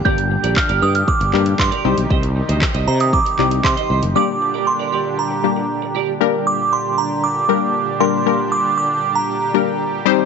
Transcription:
<<
  \new Staff \with { instrumentName = "Synth bell" } { \time 4/4 \key g \minor \tempo 4 = 117 g'''4 f'''8 ees'''16 f'''16 d'''4 c'''8. r16 | r4. bes''16 ees'''16 d'''4 c'''8. r16 | d'''4 c'''4 bes''4. r8 | r8 d'''8 c'''8 bes''8 d'''4. c'''8~ |
c'''8 d'''8 d'''8. bes''4.~ bes''16 r8 | }
  \new Staff \with { instrumentName = "Clean electric guitar" } { \time 4/4 \key g \minor <g' bes' d''>16 r8 <g' bes' d''>16 r16 <g' bes' d''>16 <g' bes' d''>16 r4. <g' bes' d''>16 <g' c'' ees''>16 r16 | <g' c'' ees''>16 r8 <g' c'' ees''>16 r16 <g' c'' ees''>16 <g' c'' ees''>16 r4. <g' c'' ees''>16 <g' c'' ees''>16 r16 | <g' bes' d''>16 r8 <g' bes' d''>16 r16 <g' bes' d''>16 <g' bes' d''>16 r4. r16 <g' bes' d''>16 r16 | r1 |
r1 | }
  \new Staff \with { instrumentName = "Synth pluck" } { \time 4/4 \key g \minor <g bes d' g'>4. r4 <g bes d' g'>4 <g c' ees' g'>8~ | <g c' ees' g'>4 r4. <g c' ees' g'>4 r8 | <g bes d' g'>4. r4 <g bes d' g'>4 r8 | <g bes d' g' bes'>4. r4 <g bes d' g' bes'>8. r16 <g bes d' g' bes'>8 |
<g bes d' g' bes'>4. r4 <g bes d' g' bes'>8. r16 <g c' ees' g' c''>8 | }
  \new Staff \with { instrumentName = "Analog synth pad" } { \clef bass \time 4/4 \key g \minor << { <g g'>1~ | <g g'>1 | <g g'>1 | <g g'>1~ |
<g g'>1 | } \\ { <bes, d d'>2.~ <bes, d d'>8 <c ees ees'>8~ | <c ees ees'>1 | <bes, d d'>1 | <bes, d d'>1~ |
<bes, d d'>2.~ <bes, d d'>8 <c ees ees'>8 | } >> }
  \new Staff \with { instrumentName = "Fretless electric bass" } { \clef bass \time 4/4 \key g \minor g,,8. bes,,16 r16 g,,16 g,8 r16 g,,16 g,8 g,16 r16 c,16 b,,16 | c,8. d,16 r16 c,16 c8. r16 c,8 c16 r16 c,16 fis,,16 | r1 | r1 |
r1 | }
  \new DrumStaff \with { instrumentName = "Drums" } \drummode { \time 4/4 bd16 hh8 hh16 <hc bd>16 hh8 hh16 bd16 hh16 hc16 hh16 <hc bd>16 hh8 hh16 | bd16 hh8 hh16 <hc bd>16 hh8 hh16 bd16 hh16 hc16 hh16 <hc bd>16 hh8 hh16 | r4 r4 r4 r4 | r4 r4 r4 r4 |
r4 r4 r4 r4 | }
>>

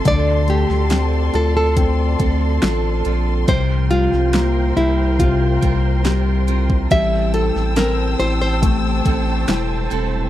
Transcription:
<<
  \new Staff \with { instrumentName = "String section" } { \time 4/4 \key d \minor \tempo 4 = 70 << { c'''1~ | c'''1 | e'''1 | } \\ { <a' d'' a''>1 | <bes' c'' g''>1 | <c'' g'' a''>1 | } >> }
  \new Staff \with { instrumentName = "Nylon-string guitar" } { \time 4/4 \key d \minor d''8 g'4 a'16 a'4.~ a'16 r8 | c''8 f'4 e'8 f'4 r4 | e''8 a'8 bes'8 c''16 c''4.~ c''16 r8 | }
  \new Staff \with { instrumentName = "Steel-string acoustic guitar" } { \time 4/4 \key d \minor <d a c' f' a'>4 <a c' f' a'>4. <c' f' a'>8 <a c' f' a'>8 <c' f' a'>8 | <c f g c' f' bes'>4 <g c' bes'>4. <g c' f' bes'>8 <g c' f' bes'>8 <g c' f' bes'>8 | <a, e g c' e' a'>4 <g c' e'>4. <g c' e' a'>8 <g c' e' a'>8 <g c' e' a'>8 | }
  \new Staff \with { instrumentName = "Felt piano" } { \time 4/4 \key d \minor d8 a8 c'8 f'8 c'4 f'4 | c8 g8 bes8 g8 c4 g4 | g8 e'8 c'8 e'8 a4 e'4 | }
  \new Staff \with { instrumentName = "Sub bass" } { \clef bass \time 4/4 \key d \minor d,8. d,8. d,4 d,8 a,,8 bes,,8 | c,8. c,8. c,4 c,4. | a,,8. a,,8. a,,4 a,,8 e,,8 e,,8 | }
  \new DrumStaff \with { instrumentName = "Drums" } \drummode { \time 4/4 <hh bd>8 hh16 sn16 <hh sn>8 hh8 <hh bd>8 <hh bd>8 <hh sn>8 hh8 | <hh bd>8 hh16 sn16 <hh sn>8 hh8 <hh bd>8 <hh bd>8 <hh sn>8 hh16 bd16 | <hh bd>8 hh16 sn16 <hh sn>8 hh8 <hh bd>8 <hh bd>8 <hh sn>8 hh8 | }
>>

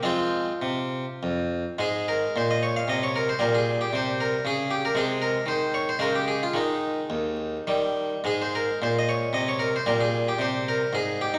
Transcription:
<<
  \new Staff \with { instrumentName = "Harpsichord" } { \time 3/4 \key f \minor \tempo 4 = 112 f'2 r4 | \key aes \major aes'8 bes'8 c''16 ees''16 des''16 f''16 ees''16 des''16 bes'16 c''16 | bes'16 aes'8 g'16 c''8 bes'8 aes'8 g'16 bes'16 | aes'8 bes'8 c''8 des''16 c''16 bes'16 g'16 aes'16 f'16 |
ees'2~ ees'8 r8 | aes'16 c''16 bes'8 c''16 ees''16 des''8 ees''16 des''16 bes'16 c''16 | bes'16 aes'8 g'16 c''8 bes'8 aes'8 g'16 ees'16 | }
  \new Staff \with { instrumentName = "Harpsichord" } { \clef bass \time 3/4 \key f \minor << { r2. | \key aes \major aes2. | g2. | aes2 aes4 |
aes2 g4 | aes2. | g2. | } \\ { <f aes c'>4 c4 f,4 | aes,4 bes,4 c4 | bes,4 c4 des4 | c4 ees4 des4 |
ees4 ees,4 ees4 | aes,4 bes,4 c4 | bes,4 c4 aes,4 | } >> }
>>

